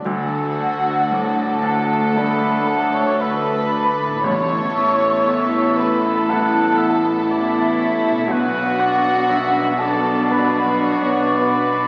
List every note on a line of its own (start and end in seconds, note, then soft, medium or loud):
0.00 3.77 D3 medium
0.00 3.81 A3 medium
0.00 3.86 D4 medium
0.00 2.81 A4 medium
0.00 3.90 D5 medium
0.00 1.94 A5 medium
0.00 2.24 D6 medium
0.04 4.20 D2 medium
0.04 4.20 A3 medium
0.04 4.20 D4 medium
0.04 4.21 D4 medium
0.04 1.62 F#4 loud
0.04 1.15 A4 medium
0.04 4.21 A4 medium
0.04 1.67 F#5 loud
1.12 2.78 A2 medium
1.12 1.65 D5 medium
1.64 2.17 A4 medium
1.64 3.23 F#5 medium
1.64 2.19 A5 loud
2.17 4.20 A3 medium
2.17 4.21 D4 medium
2.17 2.68 B4 medium
2.17 4.21 D5 medium
2.17 2.69 B5 loud
2.68 2.94 A4 medium
2.68 2.95 A5 medium
2.94 3.20 C#5 loud
2.94 3.22 C#6 loud
3.20 4.24 B4 loud
3.20 3.72 E5 medium
3.20 4.27 B5 loud
3.72 4.26 D5 medium
4.04 7.94 A2 medium
4.09 7.99 B3 medium
4.14 8.04 E4 medium
4.18 8.08 B4 medium
4.23 8.24 A1 medium
4.23 8.24 A2 medium
4.23 5.74 A2 loud
4.23 8.25 B3 medium
4.23 8.12 B3 medium
4.23 8.25 E4 medium
4.23 8.12 E4 medium
4.23 8.25 A4 medium
4.23 5.75 C#5 loud
4.23 4.75 C#5 medium
4.23 5.78 C#6 loud
4.75 6.31 E5 loud
5.26 6.88 E2 medium
5.78 6.29 B4 medium
5.78 6.30 B5 loud
6.28 8.25 B3 medium
6.28 8.25 E4 medium
6.28 7.26 A4 medium
6.28 8.25 B4 medium
6.28 6.79 F#5 loud
6.28 7.02 A5 loud
6.78 7.10 E5 medium
7.27 8.26 E4 loud
7.27 7.81 D5 medium
7.27 8.30 E5 loud
7.80 8.33 C#5 medium
8.10 11.88 B2 medium
8.15 11.88 B3 medium
8.19 11.88 D4 medium
8.24 11.88 B1 medium
8.24 11.88 B2 medium
8.24 10.27 F#4 loud
8.24 11.88 B4 medium
8.28 11.88 B1 medium
8.28 11.88 B3 loud
8.28 10.27 B3 medium
8.28 10.28 D4 medium
8.28 11.88 D4 medium
8.28 9.80 F#4 loud
8.28 8.81 B4 loud
8.28 9.80 F#5 loud
8.80 9.31 D5 loud
9.28 10.94 F#2 medium
9.28 9.83 E5 medium
9.79 10.30 A4 loud
9.79 11.88 D5 loud
9.79 10.33 A5 loud
10.30 11.88 B3 medium
10.30 11.36 B3 loud
10.30 11.37 D4 medium
10.30 11.88 D4 medium
10.30 11.36 F#4 medium
10.30 10.84 B4 medium
10.30 11.88 B4 medium
10.30 10.82 B5 loud
10.83 11.39 C#5 medium
10.83 11.39 C#6 loud
11.38 11.88 B3 medium
11.38 11.88 D4 medium
11.38 11.88 F#4 medium
11.38 11.88 B4 medium
11.38 11.88 B5 loud